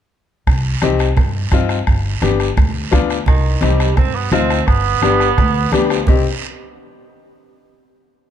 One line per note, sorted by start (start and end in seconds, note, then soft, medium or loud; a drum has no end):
0.47 0.75 C2 medium
0.47 bombo low medium
0.47 bombo rim medium
0.47 high conga soft
0.47 long guiro medium
0.82 1.10 C2 medium
0.82 1.06 C4 medium
0.82 1.07 D#4 medium
0.82 1.07 G4 medium
0.82 bombo rim medium
0.82 high conga medium
0.82 short guiro medium
0.99 bombo rim medium
0.99 short guiro medium
1.17 1.45 G2 medium
1.17 bombo low medium
1.17 bombo rim medium
1.17 high conga soft
1.17 low conga medium
1.17 long guiro medium
1.51 1.80 G2 medium
1.51 1.77 C4 medium
1.51 1.77 D#4 medium
1.51 1.77 F4 medium
1.51 bombo low medium
1.51 bombo rim medium
1.51 high conga medium
1.51 short guiro medium
1.69 bombo rim medium
1.69 short guiro medium
1.87 2.15 G1 medium
1.87 bombo low medium
1.87 bombo rim medium
1.87 high conga soft
1.87 long guiro medium
2.22 2.50 G1 medium
2.22 2.47 B3 medium
2.22 2.47 D4 medium
2.22 2.47 G4 medium
2.22 bombo rim medium
2.22 high conga medium
2.22 short guiro medium
2.40 bombo rim medium
2.40 short guiro medium
2.57 2.85 D2 loud
2.57 bombo low medium
2.57 bombo rim medium
2.57 high conga soft
2.57 low conga medium
2.57 long guiro medium
2.91 3.20 D2 medium
2.91 3.16 B3 medium
2.91 3.16 D4 medium
2.91 3.17 F4 loud
2.91 bombo low medium
2.91 bombo rim medium
2.91 high conga medium
2.91 short guiro medium
3.10 bombo rim medium
3.10 short guiro medium
3.26 3.55 C2 medium
3.26 3.60 D#3 medium
3.26 bombo low medium
3.26 bombo rim medium
3.26 high conga soft
3.26 low conga medium
3.26 long guiro medium
3.61 3.90 C2 medium
3.61 3.98 G3 medium
3.61 3.86 C4 medium
3.61 3.86 D#4 medium
3.61 3.87 G4 medium
3.61 bombo rim medium
3.61 high conga medium
3.61 short guiro medium
3.80 bombo rim medium
3.80 short guiro medium
3.96 4.25 G2 medium
3.96 4.16 C4 loud
3.96 bombo low medium
3.96 bombo rim medium
3.96 high conga soft
3.96 low conga medium
3.96 long guiro medium
4.15 4.31 B3 medium
4.32 4.60 D2 medium
4.32 4.69 C4 loud
4.32 4.57 C4 medium
4.32 4.57 D#4 medium
4.32 4.57 F4 medium
4.32 bombo rim medium
4.32 high conga medium
4.32 low conga medium
4.32 short guiro medium
4.50 bombo rim medium
4.50 short guiro medium
4.67 4.95 G1 medium
4.67 5.74 B3 loud
4.67 bombo low medium
4.67 bombo rim medium
4.67 high conga soft
4.67 long guiro medium
5.02 5.30 G1 medium
5.02 5.27 B3 medium
5.02 5.27 D4 medium
5.02 5.27 G4 medium
5.02 bombo rim medium
5.02 high conga medium
5.02 short guiro medium
5.20 bombo rim medium
5.20 short guiro medium
5.38 5.66 D2 loud
5.38 bombo low medium
5.38 bombo rim medium
5.38 high conga soft
5.38 low conga medium
5.38 long guiro medium
5.72 6.00 D2 medium
5.72 5.92 G3 medium
5.72 5.97 B3 medium
5.72 5.97 D4 medium
5.72 5.98 G4 medium
5.72 bombo rim medium
5.72 high conga medium
5.72 short guiro medium
5.90 6.07 F3 medium
5.90 bombo rim medium
5.90 short guiro medium
6.07 6.24 C2 medium
6.07 6.24 D#3 medium
6.07 6.24 C4 medium
6.07 6.24 D#4 medium
6.07 6.24 G4 medium
6.07 bombo low loud
6.07 low conga medium
6.07 long guiro loud